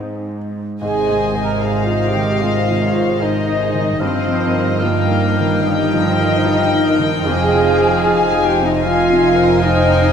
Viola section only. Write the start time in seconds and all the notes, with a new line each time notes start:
Already playing: C4 D#4
0.83 G#4
1.44 A#4
1.63 G#4
1.84 F4
2.04 G4
2.43 F4
3.22 D#4
4.02 C4
4.83 A#3
5.64 D#4
7.26 G#4
8.44 G4
8.65 D#4
8.84 F4
9.62 D#4